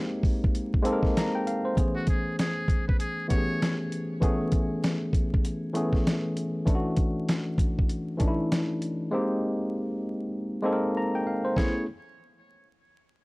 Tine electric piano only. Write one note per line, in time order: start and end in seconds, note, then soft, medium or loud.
0.00 0.45 G#3 medium
0.00 0.46 A#3 medium
0.00 0.46 C4 medium
0.00 0.46 D#4 medium
0.00 0.47 G4 loud
0.83 1.69 G#3 medium
0.83 1.69 A#3 medium
0.83 1.70 C4 medium
0.83 1.70 D#4 medium
0.83 0.94 A4 medium
0.93 1.74 A#4 loud
1.17 1.34 A#5 medium
1.35 1.46 G5 medium
1.47 1.64 F5 medium
1.65 1.94 C5 medium
1.75 2.90 E3 medium
1.75 2.90 A3 medium
1.75 2.91 B3 medium
1.75 2.91 C#4 medium
1.75 2.91 G#4 medium
3.27 4.14 E3 medium
3.27 4.14 A3 medium
3.27 4.15 B3 medium
3.27 4.15 C#4 medium
3.27 3.38 G4 medium
3.38 4.19 G#4 medium
4.20 5.34 E3 medium
4.20 5.35 A3 medium
4.20 5.35 B3 medium
4.20 5.36 C#4 medium
4.20 5.36 G#4 loud
5.73 6.59 E3 medium
5.73 6.59 A3 medium
5.73 6.60 B3 medium
5.73 6.60 C#4 medium
5.73 6.61 G#4 medium
6.65 7.79 E3 medium
6.65 7.80 A3 medium
6.65 7.80 C#4 medium
6.65 7.81 D4 medium
6.65 6.76 E4 medium
6.75 7.84 F#4 medium
8.18 9.04 E3 medium
8.18 9.04 A3 medium
8.18 9.05 C#4 medium
8.18 9.05 D4 medium
8.18 8.28 D#4 medium
8.28 9.09 E4 medium
9.11 10.25 G#3 loud
9.11 10.25 A#3 medium
9.11 10.26 C4 medium
9.11 10.26 D#4 medium
9.11 10.26 G4 loud
10.62 11.49 G#3 medium
10.62 11.49 A#3 medium
10.62 11.49 C4 medium
10.62 11.50 D#4 medium
10.62 10.73 A4 medium
10.72 11.54 A#4 medium
10.97 11.14 A#5 medium
11.15 11.26 G5 medium
11.27 11.44 F5 medium
11.45 11.74 C5 medium
11.57 11.85 A3 medium
11.57 11.85 B3 medium
11.57 11.85 C#4 medium
11.57 11.85 E4 medium
11.57 11.85 G#4 medium